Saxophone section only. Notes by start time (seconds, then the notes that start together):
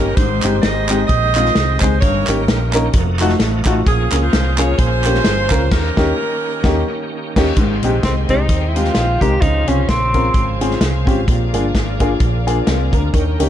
Already playing: C#4 G4 A#4
0.16 D#4 G4 C5
0.61 G4 C5 D#5
1.07 G4 C5 D#5
1.80 C5
2.00 A#4 C#5
3.87 C#4 F4 G#4
4.22 F4 G#4 C5
4.59 C#5
4.78 F4 G#4 C5
5.71 C#4 G4 A#4